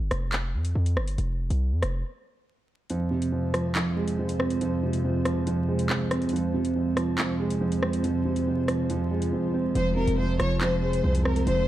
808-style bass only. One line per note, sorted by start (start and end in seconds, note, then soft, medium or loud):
0.00 0.11 G1 loud
0.11 0.55 F1 loud
0.54 0.74 F2 loud
0.75 0.98 F2 loud
0.97 1.17 G1 loud
1.18 1.49 F1 loud
1.50 1.73 C2 loud
1.72 1.82 F2 loud
1.82 2.03 F1 loud
9.75 10.06 F1 loud
10.08 10.38 F1 loud
10.40 11.01 F1 loud
11.04 11.45 C2 loud
11.47 11.68 F1 loud